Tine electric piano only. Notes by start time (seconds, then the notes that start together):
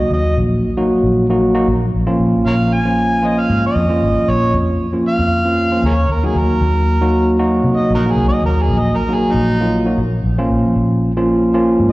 Already playing: F#3 A#3 D#4 F#4
0.77 F#3 A#3 D#4 F#4
1.30 F#3 A#3 D#4 F#4
1.55 F#3 A#3 D#4 F#4
2.07 F3 A#3 C#4 F4
2.85 F3 A#3 C#4 F4
3.22 F3 A#3 C#4 F4
3.89 F3 A#3 C#4 F4
4.93 F3 A#3 C#4 F4
5.45 F3 A#3 C#4 F4
5.72 F3 A#3 C#4 F4
6.23 F#3 A#3 D#4 F#4
7.01 F#3 A#3 D#4 F#4
7.39 F#3 A#3 D#4 F#4
8.05 F#3 A#3 D#4 F#4
9.09 F#3 A#3 D#4 F#4
9.61 F#3 A#3 D#4 F4
9.86 F#3 A#3 D#4 F#4
10.38 F3 A#3 C#4 F4
11.17 F3 A#3 C#4 F4
11.54 F3 A#3 C#4 F4